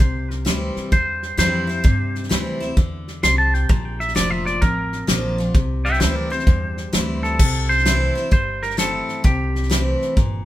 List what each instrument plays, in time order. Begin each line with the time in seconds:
Already playing: clean electric guitar C5
0.00 upright bass C2, steel-string acoustic guitar C3, kick
0.30 clean electric guitar A#4, snare
0.45 upright bass D2, steel-string acoustic guitar E3 G3 C4 E4, snare, hi-hat pedal
0.76 muted upright bass stroke, snare
0.92 upright bass E2, steel-string acoustic guitar G2, clean electric guitar C5, kick, snare
1.23 snare
1.37 upright bass F2, steel-string acoustic guitar E3 G3 C4 E4, clean electric guitar C5, snare, hi-hat pedal
1.67 steel-string acoustic guitar C4 E4, snare
1.84 upright bass G2, steel-string acoustic guitar C3, kick, snare
2.15 snare
2.23 snare
2.29 upright bass D2, steel-string acoustic guitar E3 G3 C4 E4, snare, hi-hat pedal
2.60 steel-string acoustic guitar C4 E4, snare
2.77 upright bass E2, steel-string acoustic guitar D3, kick, snare
3.08 snare
3.23 upright bass C2, steel-string acoustic guitar C3, clean electric guitar C6, snare, hi-hat pedal
3.38 clean electric guitar A5
3.54 clean electric guitar G5, snare
3.69 upright bass A#1, steel-string acoustic guitar A#2, clean electric guitar A5, kick, snare
3.85 clean electric guitar G5
4.00 clean electric guitar E5, snare
4.08 snare
4.15 upright bass F1, steel-string acoustic guitar F3 A#3 D4 F4, clean electric guitar D5, snare, hi-hat pedal
4.30 clean electric guitar E5
4.46 clean electric guitar D5, snare
4.61 upright bass A1, steel-string acoustic guitar F2, clean electric guitar A#4, kick, snare
4.92 snare
5.07 upright bass A#1, steel-string acoustic guitar F3 A#3 D4 F4, snare, hi-hat pedal
5.38 steel-string acoustic guitar D4 F4, snare
5.55 upright bass C2, steel-string acoustic guitar C3, kick, snare
5.85 clean electric guitar E5 G5, snare
5.93 snare
6.00 upright bass D2, steel-string acoustic guitar E3 G3 C4 E4, clean electric guitar C5 E5, snare, hi-hat pedal
6.16 clean electric guitar A#4 D5
6.30 steel-string acoustic guitar C4 E4, clean electric guitar C5, snare
6.39 snare
6.47 upright bass E2, steel-string acoustic guitar G2, kick, snare
6.77 snare
6.93 upright bass D2, steel-string acoustic guitar E3 G3 C4 E4, snare, hi-hat pedal
7.23 clean electric guitar A4, snare
7.39 upright bass C2, steel-string acoustic guitar C3, kick, snare, crash
7.69 clean electric guitar C5, snare
7.78 snare
7.85 steel-string acoustic guitar E3 A3 C4 E4, snare, hi-hat pedal
8.15 steel-string acoustic guitar C4 E4, snare
8.31 upright bass G1, steel-string acoustic guitar G2, clean electric guitar C5, kick, snare
8.62 clean electric guitar A#4, snare
8.70 snare
8.77 steel-string acoustic guitar E3 A3 C4 E4, clean electric guitar A4, snare, hi-hat pedal
9.08 snare
9.24 upright bass C2, steel-string acoustic guitar C3, clean electric guitar G4, kick, snare
9.55 snare
9.63 snare
9.70 steel-string acoustic guitar E3 A3 C4 E4, snare, hi-hat pedal
10.02 snare
10.17 upright bass G1, steel-string acoustic guitar A#2, kick, snare